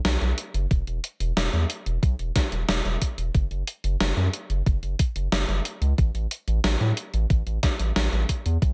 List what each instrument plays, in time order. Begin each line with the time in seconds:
0.05 analog synth bass B1, snare, closed hi-hat
0.21 analog synth bass B1, closed hi-hat
0.38 closed hi-hat
0.54 analog synth bass F#1, closed hi-hat
0.71 analog synth bass E1, kick, closed hi-hat
0.87 analog synth bass E1, closed hi-hat
1.04 closed hi-hat
1.20 analog synth bass E1, closed hi-hat
1.37 analog synth bass E1, snare, closed hi-hat
1.53 analog synth bass E2, closed hi-hat
1.70 closed hi-hat
1.86 analog synth bass E1, closed hi-hat
2.03 analog synth bass B1, kick, closed hi-hat
2.19 analog synth bass E1, closed hi-hat
2.36 kick, snare, closed hi-hat
2.52 analog synth bass E1, closed hi-hat
2.69 analog synth bass E1, snare, closed hi-hat
2.85 analog synth bass E1, closed hi-hat
3.02 kick, closed hi-hat
3.18 analog synth bass E1, closed hi-hat
3.35 analog synth bass F#1, kick, closed hi-hat
3.51 analog synth bass F#1, closed hi-hat
3.67 closed hi-hat
3.84 analog synth bass F#1, closed hi-hat
4.00 analog synth bass F#1, snare, closed hi-hat
4.17 analog synth bass F#2, closed hi-hat
4.33 closed hi-hat
4.50 analog synth bass F#1, closed hi-hat
4.66 analog synth bass F#1, kick, closed hi-hat
4.83 analog synth bass F#1, closed hi-hat
4.99 kick, closed hi-hat
5.16 analog synth bass F#1, closed hi-hat
5.32 analog synth bass F#1, snare, closed hi-hat
5.48 analog synth bass F#1, closed hi-hat
5.65 closed hi-hat
5.81 analog synth bass C#2, closed hi-hat
5.98 analog synth bass A1, kick, closed hi-hat
6.14 analog synth bass A1, closed hi-hat
6.31 closed hi-hat
6.48 analog synth bass A1, closed hi-hat
6.64 analog synth bass A1, snare, closed hi-hat
6.81 analog synth bass A2, closed hi-hat
6.97 closed hi-hat
7.14 analog synth bass A1, closed hi-hat
7.30 analog synth bass A1, kick, closed hi-hat
7.46 analog synth bass A1, closed hi-hat
7.63 kick, snare, closed hi-hat
7.79 analog synth bass A1, closed hi-hat
7.96 analog synth bass A1, snare, closed hi-hat
8.12 analog synth bass A1, closed hi-hat
8.29 kick, closed hi-hat
8.46 analog synth bass E2, closed hi-hat
8.62 analog synth bass B1, kick, closed hi-hat